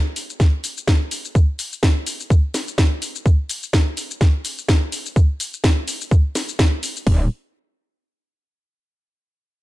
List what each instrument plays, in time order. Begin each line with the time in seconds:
0.16 open hi-hat, shaker
0.30 shaker
0.40 kick, snare, shaker
0.64 open hi-hat, shaker
0.77 shaker
0.88 kick, snare, shaker
1.11 open hi-hat, shaker
1.25 shaker
1.35 kick, shaker
1.59 open hi-hat, shaker
1.73 shaker
1.83 kick, snare, shaker
2.07 open hi-hat, shaker
2.20 shaker
2.30 kick, shaker
2.54 snare, open hi-hat, shaker
2.68 shaker
2.78 kick, snare, shaker
3.02 open hi-hat, shaker
3.15 shaker
3.26 kick, shaker
3.49 open hi-hat, shaker
3.63 shaker
3.73 kick, snare, shaker
3.97 open hi-hat, shaker
4.11 shaker
4.21 kick, snare, shaker
4.45 open hi-hat, shaker
4.58 shaker
4.68 kick, snare, shaker
4.92 open hi-hat, shaker
5.06 shaker
5.16 kick, shaker
5.40 open hi-hat, shaker
5.54 shaker
5.64 kick, snare, shaker
5.88 open hi-hat, shaker
6.01 shaker
6.11 kick, shaker
6.35 snare, open hi-hat, shaker
6.49 shaker
6.59 kick, snare, shaker
6.83 open hi-hat, shaker
6.96 shaker
7.07 wobble bass D#1, kick, open hi-hat